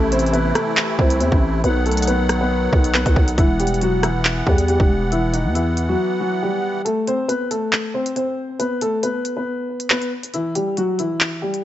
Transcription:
Already playing: A1 C3 E3 A3 E4
0.12 C4 C5, closed hi-hat
0.19 closed hi-hat
0.26 closed hi-hat
0.33 B3 B4, closed hi-hat
0.55 A3 A4, cross-stick, closed hi-hat
0.77 clap
0.98 C2 C4 C5, kick
1.10 closed hi-hat
1.20 E2 C4 C5, closed hi-hat
1.32 A1, kick
1.64 B1 D#3 F#3 B3 B4 F#5, closed hi-hat
1.86 A3 A4, closed hi-hat
1.91 closed hi-hat
1.97 closed hi-hat
2.02 closed hi-hat
2.07 B3 B4, closed hi-hat
2.29 cross-stick, closed hi-hat
2.41 B3 B4
2.73 B1, kick
2.84 closed hi-hat
2.94 B3 B4, clap
3.06 B1, kick, closed hi-hat
3.16 B1, kick
3.28 closed hi-hat
3.38 E1 E3 E4, kick, closed hi-hat
3.60 G3 G4, closed hi-hat
3.67 closed hi-hat
3.74 closed hi-hat
3.81 F#3 F#4, closed hi-hat
4.03 E3 E4, cross-stick, closed hi-hat
4.25 clap
4.46 E2 G3 G4, kick
4.58 closed hi-hat
4.68 G3 G4, closed hi-hat
4.80 E1, kick
5.12 E3 E4, closed hi-hat
5.33 D#3 D#4, closed hi-hat
5.45 E2
5.55 E3 E4, closed hi-hat
5.77 closed hi-hat
5.89 F#3 F#4
6.20 F#3 F#4
6.42 G3 G4
6.85 A3 A4, closed hi-hat
7.07 C4 C5, closed hi-hat
7.28 B3 B4, closed hi-hat
7.51 A3 A4, closed hi-hat
7.73 clap
7.94 C4 C5
8.06 closed hi-hat
8.16 C4 C5, closed hi-hat
8.59 B3 B4, closed hi-hat
8.81 A3 A4, closed hi-hat
9.03 B3 B4, closed hi-hat
9.25 closed hi-hat
9.37 B3 B4
9.80 closed hi-hat
9.90 B3 B4, clap
10.02 closed hi-hat
10.23 closed hi-hat
10.34 E3 E4, closed hi-hat
10.55 G3 G4, closed hi-hat
10.77 F#3 F#4, closed hi-hat
10.99 E3 E4, closed hi-hat
11.21 clap
11.42 G3 G4
11.54 closed hi-hat

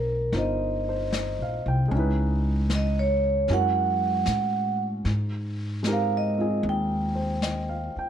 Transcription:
Already playing: B1 A#3 C4 D#4 G4 A#4
0.32 G1 D#4 F4 A#4 C5, brush sweep, snare
0.38 D#5
0.89 C5
1.12 D#5, snare, hi-hat pedal
1.39 A#1 F5
1.66 C2 G5
1.88 C#2 G#3 C#4, brush sweep
1.95 D#4 E4
1.99 B4
2.70 snare, hi-hat pedal
2.75 D#5
2.99 C#5
3.48 F#2 G#3 C#4 E4 F#4 A#4, brush sweep, snare
3.53 F#5
4.26 A2, snare, hi-hat pedal
5.05 G#2, brush sweep, snare
5.83 G#3 C4 D#4, snare, hi-hat pedal
5.87 G4 A#4
5.92 F5
6.17 D#5
6.37 C4 F4
6.41 G#4
6.63 D#2, brush sweep
6.69 G5
7.15 C5
7.42 D#5, snare, hi-hat pedal
7.69 F5
7.96 G5, muted upright bass stroke

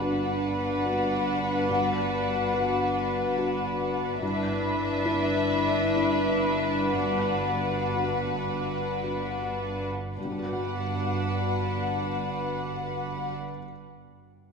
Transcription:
Already playing: G1 G2 B3 D4 B4 F#5
0.01 D4 F#4 B4
0.85 D4 F#4 B4
1.70 G2 F#4
2.54 D4 F#4 B4
3.37 D4 F#4 B4
4.21 G1 G2 D4 E4 B4 E5
5.06 D4 E4 B4
5.96 D4 E4 B4
6.93 G2 B3 F#4 F#5
7.96 D4 F#4 B4
9.03 D4 F#4 B4
10.16 G1 G2 B3 D4 F#4 B4 F#5
10.25 G3
10.31 D4
10.39 F#4
10.46 B4
10.53 F#5

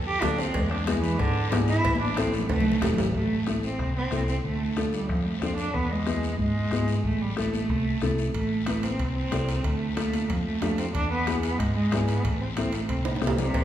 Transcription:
Already playing: F2
0.07 G4
0.22 D2 D4 F4 A4, bombo low, bombo rim, cowbell, high conga, low conga, low timbale, short guiro
0.38 C4, short guiro
0.54 E2 G#3, bombo low, cowbell, long guiro
0.71 D4, bombo rim
0.87 G#3 B3 E4 G#4, bombo rim, cowbell, high conga, short guiro
1.03 E3, short guiro
1.18 G#2 D3, bombo low, cowbell, long guiro
1.51 G#2 B3 E4 G#4, bombo rim, cowbell, high conga, low timbale, short guiro
1.68 E4, short guiro
1.85 A1, bombo low, cowbell, high conga, long guiro
1.95 high conga
2.01 D4
2.06 high conga
2.17 C4 E4 A4, bombo rim, cowbell, short guiro
2.28 high conga
2.33 A3, short guiro
2.39 low conga
2.49 C2 A3, bombo low, cowbell, low conga, high timbale, long guiro
2.60 low conga
2.72 low conga
2.82 E1 C4 E4 A4, bombo low, bombo rim, cowbell, low conga, low timbale, short guiro
2.94 low conga
2.98 G#1, low timbale, short guiro
3.04 low conga
3.14 A1 A3, bombo low, long guiro
3.46 A3 C4 E4 A4, bombo rim, high conga, short guiro
3.63 C4, short guiro
3.79 C2, bombo low, bombo rim, long guiro
3.96 C4
4.11 C2 C4 E4 A4, bombo rim, high conga, short guiro
4.28 C4, short guiro
4.44 D2 A3, bombo low, long guiro
4.77 A3 D4 F4 A4, bombo rim, high conga, short guiro
4.93 G3, short guiro
5.09 F2 F3, bombo low, bombo rim, long guiro
5.26 A3
5.42 F2 C4 D4 F4 A4, bombo rim, high conga, short guiro
5.57 D4, short guiro
5.74 E2 B3, bombo low, long guiro
5.91 G#3
6.06 B3 E4 G#4, bombo rim, high conga, short guiro
6.23 short guiro
6.39 G#2 G#3, bombo low, long guiro
6.71 G#2 B3 E4 G#4, bombo rim, high conga, short guiro
6.88 short guiro
7.04 A1 A3, bombo low, long guiro
7.22 G3
7.36 A3 C4 E4 A4, bombo rim, high conga, short guiro
7.53 A3, high conga, short guiro
7.69 C2, bombo low, long guiro
8.01 C2 C4 E4 A4, bombo low, bombo rim, high conga, short guiro
8.18 short guiro
8.34 A1 A3, bombo low, high timbale, long guiro
8.66 A3 C4 E4 B4, bombo rim, high conga, high timbale, short guiro
8.83 C4, high conga, high timbale, short guiro
8.99 C2, bombo low, high timbale, long guiro
9.15 C4
9.31 C2 C4 E4 A4, bombo rim, high conga, high timbale, low timbale, short guiro
9.49 high timbale, short guiro
9.64 D2 A3, bombo low, high timbale, long guiro
9.96 A3 D4 F4 A4, bombo rim, high conga, high timbale, short guiro
10.13 high conga, high timbale, short guiro
10.29 F2 F3, bombo low, high timbale, long guiro
10.46 A3
10.61 F2 A3 D4 F4 A4, bombo rim, high conga, high timbale, low timbale, short guiro
10.78 C4, high timbale, short guiro
10.95 E2 D4, bombo low, high timbale, long guiro
11.10 B3
11.27 B3 E4 G#4, bombo rim, high conga, high timbale, short guiro
11.43 B3, high timbale, short guiro
11.59 G#2 G#3, bombo low, bombo rim, high timbale, long guiro
11.75 G#3
11.92 G#2 B3 E4 G#4, bombo rim, high conga, high timbale, low timbale, short guiro
12.08 B3, high timbale, short guiro
12.24 A1 A3, bombo low, high timbale, long guiro
12.41 C4
12.57 C4 E4 A4, bombo rim, high conga, high timbale, short guiro
12.72 A3, high timbale, short guiro
12.89 C2 C4, bombo low, high timbale, long guiro
13.05 A2, high conga, high timbale
13.16 high timbale
13.21 C2 A2 C4 E4 A4, bombo rim, high conga, short guiro
13.27 low timbale
13.38 C3, low conga, low timbale, short guiro
13.54 A1, bombo low, cowbell, long guiro

